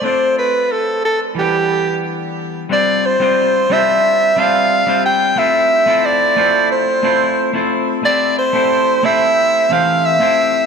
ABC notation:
X:1
M:4/4
L:1/16
Q:1/4=90
K:Gmix
V:1 name="Soprano saxophone"
c2 B2 A2 A2 G4 z4 | d2 c4 e4 f4 g2 | e4 d4 c6 z2 | d2 c4 e4 f2 e4 |]
V:2 name="Clean electric guitar"
[A,CDFd]8 [E,G,B,DG]8 | [G,CDFc]3 [G,CDFc]3 [G,CDFc]4 [G,CDFc]3 [G,CDFc]3 | [A,CEFc]3 [A,CEFc]3 [A,CEFc]4 [A,CEFc]3 [A,CEFc]3 | [A,CEGc]3 [A,CEGc]3 [A,CEGc]4 [E,A,CGc]3 [A,CEGc]3 |]